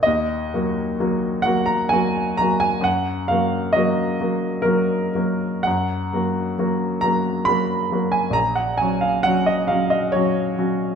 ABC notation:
X:1
M:3/4
L:1/16
Q:1/4=67
K:Ebm
V:1 name="Grand piano"
e6 g b a2 b a | g2 f2 e4 B4 | g6 b2 c'3 a | b g a f g e f e d4 |]
V:2 name="Grand piano"
E,,2 [G,B,G]2 [G,B,G]2 [G,B,G]2 [G,B,G]2 [G,B,G]2 | G,,2 [G,B,G]2 [G,B,G]2 [G,B,G]2 [G,B,G]2 [G,B,G]2 | G,,2 [G,B,G]2 [G,B,G]2 [G,B,G]2 [G,B,G]2 [G,B,G]2 | B,,,2 [G,DG]2 [G,DG]2 [G,DG]2 [G,DG]2 [G,DG]2 |]